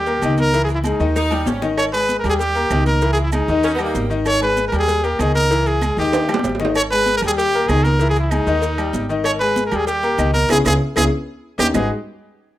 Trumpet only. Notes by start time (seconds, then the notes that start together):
Already playing: G4
0.40 A#4
0.65 G#4
0.75 E4
0.86 D#4
1.78 C#5
1.93 B4
2.19 A#4
2.29 G#4
2.40 G4
2.86 A#4
3.13 G#4
3.23 E4
3.33 D#4
4.26 C#5
4.42 B4
4.68 A#4
4.79 G#4
5.04 G4
5.21 G#4
5.35 A#4
5.67 G#4
5.99 G4
6.75 C#5
6.91 B4
7.17 A#4
7.27 G#4
7.37 G4
7.68 G#4
7.83 A#4
8.09 G#4
8.19 E4
8.30 D#4
9.24 C#5
9.39 B4
9.66 A#4
9.76 G#4
9.87 G4
10.34 A#4
10.51 G#4
10.66 G#4
10.97 G#4
11.60 G4
11.75 G#4